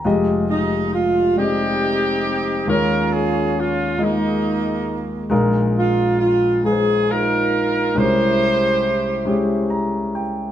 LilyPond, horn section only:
\new Staff \with { instrumentName = "Horn section" } { \time 6/8 \key f \minor \tempo 4. = 46 << { r8 ees'8 f'8 g'4. | bes'8 aes'8 f'8 ees'4 r8 | r8 f'8 f'8 aes'8 bes'4 | c''2 r4 | } \\ { r4. <c' ees'>4. | <des' f'>4. <aes bes>4. | r2 <ees' f'>4 | <e' g'>2 r4 | } >> }